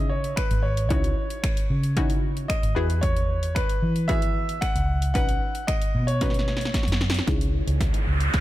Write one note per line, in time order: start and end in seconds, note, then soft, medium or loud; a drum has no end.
0.00 0.33 C#3 medium
0.00 0.70 C#4 medium
0.00 0.70 D#4 medium
0.00 0.70 E4 medium
0.00 0.70 G#4 medium
0.00 0.12 D#5 loud
0.09 0.35 C#5 medium
0.24 closed hi-hat soft
0.36 0.64 B4 medium
0.36 finger snap loud
0.36 kick loud
0.36 closed hi-hat medium
0.51 0.91 G#1 medium
0.51 closed hi-hat medium
0.63 0.87 C#5 medium
0.77 closed hi-hat medium
0.89 1.12 C#2 loud
0.89 1.77 C#4 medium
0.89 1.77 D#4 medium
0.89 1.77 E4 medium
0.89 1.77 F#4 medium
0.89 2.54 C#5 medium
0.89 kick loud
0.89 closed hi-hat medium
1.04 closed hi-hat medium
1.30 closed hi-hat medium
1.44 finger snap loud
1.44 kick loud
1.44 closed hi-hat medium
1.57 closed hi-hat medium
1.70 2.45 C#3 medium
1.83 closed hi-hat soft
1.97 2.76 C#4 medium
1.97 2.76 D#4 medium
1.97 2.75 E4 medium
1.97 2.75 F#4 loud
1.97 kick loud
1.97 closed hi-hat medium
2.10 closed hi-hat medium
2.37 closed hi-hat soft
2.48 2.76 D#5 medium
2.48 finger snap loud
2.48 kick loud
2.48 closed hi-hat medium
2.63 2.74 G#1 medium
2.63 closed hi-hat medium
2.75 3.62 E2 loud
2.75 3.62 B3 medium
2.75 3.62 E4 medium
2.75 3.62 F#4 medium
2.75 3.62 G#4 medium
2.75 3.03 B4 medium
2.90 closed hi-hat medium
3.01 3.57 C#5 loud
3.01 kick loud
3.01 closed hi-hat medium
3.17 closed hi-hat medium
3.43 closed hi-hat medium
3.55 4.05 B4 medium
3.55 finger snap loud
3.55 kick loud
3.55 closed hi-hat medium
3.69 closed hi-hat medium
3.83 4.58 E3 medium
3.96 closed hi-hat soft
4.08 4.95 B3 medium
4.08 4.95 E4 medium
4.08 4.95 F#4 medium
4.08 4.95 G#4 medium
4.08 4.63 E5 loud
4.08 kick loud
4.08 closed hi-hat medium
4.22 closed hi-hat medium
4.49 closed hi-hat soft
4.61 5.12 F#5 loud
4.61 finger snap loud
4.61 kick loud
4.61 closed hi-hat medium
4.75 5.15 C#2 medium
4.75 closed hi-hat medium
5.02 closed hi-hat medium
5.14 5.37 B1 medium
5.14 6.01 C#4 medium
5.14 6.01 D#4 medium
5.14 6.01 F#4 medium
5.14 6.01 B4 medium
5.14 5.69 F#5 loud
5.14 kick loud
5.14 closed hi-hat medium
5.29 closed hi-hat soft
5.55 closed hi-hat medium
5.67 6.05 D#5 medium
5.67 finger snap loud
5.67 kick loud
5.67 closed hi-hat medium
5.82 closed hi-hat medium
5.95 6.70 B2 medium
6.07 6.97 C#5 loud
6.07 closed hi-hat soft
6.21 7.07 C#4 medium
6.21 7.08 D#4 medium
6.21 7.08 F#4 medium
6.21 7.08 B4 medium
6.21 kick loud
6.21 snare medium
6.21 closed hi-hat medium
6.30 snare medium
6.34 closed hi-hat soft
6.39 snare medium
6.48 snare medium
6.57 snare medium
6.61 closed hi-hat soft
6.65 snare medium
6.74 kick loud
6.74 snare medium
6.74 closed hi-hat medium
6.83 snare medium
6.88 7.20 F#2 medium
6.88 closed hi-hat medium
6.92 snare medium
7.01 snare medium
7.10 snare loud
7.14 closed hi-hat medium
7.19 snare medium
7.27 7.60 C#2 medium
7.27 7.45 E3 medium
7.27 7.40 G#3 medium
7.27 8.14 C#4 medium
7.27 8.14 D#4 medium
7.27 7.40 D#4 medium
7.27 8.14 E4 medium
7.27 8.14 G#4 medium
7.27 7.39 G#4 medium
7.27 kick loud
7.27 snare soft
7.27 closed hi-hat medium
7.27 riser medium
7.41 muted clean electric guitar stroke soft
7.41 closed hi-hat medium
7.54 muted clean electric guitar stroke soft
7.67 7.89 C#2 medium
7.67 7.79 E3 medium
7.67 7.79 G#3 medium
7.67 7.80 D#4 medium
7.67 7.80 G#4 medium
7.67 closed hi-hat medium
7.80 muted clean electric guitar stroke soft
7.80 kick loud
7.80 snare medium
7.80 closed hi-hat medium
7.93 8.06 E3 medium
7.93 8.06 G#3 medium
7.93 8.06 D#4 medium
7.93 8.07 G#4 medium
7.93 closed hi-hat medium
8.07 8.29 C#2 medium
8.07 muted clean electric guitar stroke soft
8.20 muted clean electric guitar stroke soft
8.20 closed hi-hat soft
8.34 8.40 C#2 medium
8.34 muted clean electric guitar stroke soft
8.34 kick loud
8.34 snare medium
8.34 closed hi-hat medium